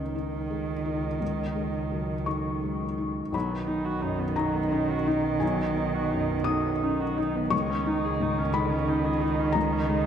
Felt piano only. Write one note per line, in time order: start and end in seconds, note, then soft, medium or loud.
0.00 1.17 C#2 soft
0.00 0.14 C#4 soft
0.00 0.16 D#4 soft
0.16 0.72 D#4 soft
0.50 1.07 G#3 soft
0.85 1.42 D#4 soft
1.20 3.30 C#2 soft
1.55 2.13 G#3 soft
1.92 2.28 F#3 soft
2.26 2.84 D#4 soft
2.26 3.29 C#6 medium
2.63 3.20 G#3 soft
2.98 3.34 D#4 soft
3.32 5.37 B1 medium
3.32 4.34 B5 medium
3.67 4.23 D#4 soft
4.02 4.58 F#2 soft
4.36 4.93 D#4 soft
4.36 5.37 A#5 medium
4.71 5.06 C#4 soft
5.07 5.63 D#4 soft
5.40 7.48 B1 medium
5.40 6.43 G#5 medium
5.77 6.34 B3 soft
6.13 6.70 F#2 soft
6.44 7.04 D#4 soft
6.44 7.46 D#6 medium
6.83 7.18 C#4 soft
7.18 7.52 D#4 medium
7.50 9.51 C#2 medium
7.50 8.49 C#6 medium
7.86 8.41 D#4 medium
8.20 8.74 G#2 soft
8.54 9.08 D#4 medium
8.54 9.51 B5 medium
8.88 9.22 C#4 soft
9.22 9.76 D#4 medium
9.52 10.06 C#2 medium
9.52 10.06 A#5 medium
9.89 10.06 G#3 medium